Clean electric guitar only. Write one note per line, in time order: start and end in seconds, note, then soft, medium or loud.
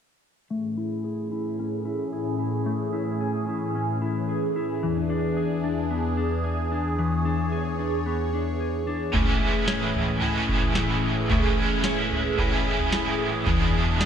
0.50 2.65 A3 medium
0.77 1.31 E4 soft
1.04 2.12 G#4 medium
1.32 1.85 E4 soft
1.59 3.74 C#4 soft
1.85 2.39 E4 soft
2.13 3.20 G#4 medium
2.39 2.92 E4 soft
2.66 4.82 A3 medium
2.93 3.48 E4 medium
3.21 4.28 G#4 medium
3.48 4.01 E4 soft
3.75 4.88 C#4 soft
4.02 4.56 E4 medium
4.29 5.13 G#4 medium
4.56 5.09 E4 medium
4.83 6.98 E3 medium
5.10 5.63 D4 medium
5.37 6.44 G#4 medium
5.64 6.16 D4 soft
5.91 8.05 B3 soft
6.17 6.70 D4 soft
6.44 7.52 G#4 medium
6.71 7.24 D4 medium
6.99 9.14 E3 medium
7.25 7.78 D4 medium
7.52 8.60 G#4 medium
7.79 8.32 D4 soft
8.06 9.20 B3 medium
8.33 8.86 D4 medium
8.60 9.40 G#4 medium
8.87 9.20 D4 medium
9.14 11.29 A3 medium
9.41 9.95 G#4 medium
9.68 11.84 C#5 medium
9.95 10.49 G#4 medium
10.23 10.76 E4 medium
10.49 11.03 G#4 soft
10.76 12.39 E4 medium
11.04 11.57 G#4 medium
11.31 13.47 A3 medium
11.58 12.12 G#4 medium
11.85 13.52 C#5 medium
12.13 12.67 G#4 medium
12.39 12.93 E4 medium
12.67 13.21 G#4 medium
12.93 14.04 E4 medium
13.21 13.75 G#4 medium
13.47 14.05 E3 medium
13.75 14.05 G#4 medium
14.01 14.05 D5 medium